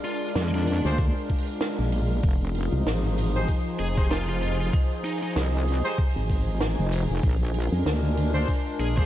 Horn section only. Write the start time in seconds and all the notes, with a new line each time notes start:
0.85 D4 F4 G#4 C5
3.35 D#4 G4 G#4 C5
3.97 D#4 G4 G#4 C5
5.85 D#4 G4 G#4 C5
8.35 D4 F4 G#4 C5
8.97 D4 F4 G#4 C5